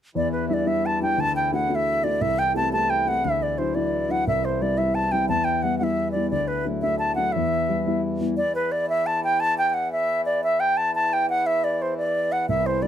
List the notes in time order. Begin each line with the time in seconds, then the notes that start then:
0.15 E2 E3 D5
0.32 B4
0.49 G3 D4 E4 E5
0.54 D5
0.66 G3 D4 E4 E5
0.86 A5
1.01 G3 D4 E4 G5
1.18 D2 A5
1.36 G5
1.52 A3 D4 F#4 F#5
1.69 A3 D4 F#4 F#5
1.75 E5
2.03 A3 D4 F#4 D5
2.21 C2 E5
2.39 G5
2.55 A3 C4 G4 A5
2.72 A3 C4 G4 A5
2.90 G5
3.06 A3 C4 G4 F#5
3.24 D2 E5
3.43 D5
3.58 F#3 D4 E4 C5
3.75 F#3 D4 E4 D5
4.09 F#3 D4 E4 F#5
4.26 C2 E2 E3 E5
4.45 C5
4.61 G3 C4 E4 D5
4.78 G3 C4 E4 E5
4.95 A5
5.12 G3 C4 E4 G5
5.29 E2 A5
5.44 G5
5.62 G3 B3 E4 F#5
5.79 G3 B3 E4 F#5
5.83 E5
6.12 G3 B3 D5
6.16 E4
6.31 D2 D5
6.48 B4
6.65 F#3 A3 D4
6.82 F#3 A3 D4 E5
6.99 A5
7.15 F#3 A3 D4 F#5
7.32 E2 E5
7.69 G3 B3 E4
7.86 G3 B3 E4
8.20 G3 B3 E4
8.36 E2 E3 D5
8.55 B4
8.72 D5
8.89 E5
9.06 A5
9.24 G5
9.40 A5
9.58 G5
9.70 G5
9.74 F#5
9.92 E5
10.25 D5
10.44 E5
10.60 G5
10.77 A5
10.95 A5
11.13 G5
11.29 F#5
11.46 E5
11.64 D5
11.82 C5
11.97 D5
12.32 F#5
12.48 C2 E2 E3 E5
12.66 C5
12.82 G3 C4 E4 D5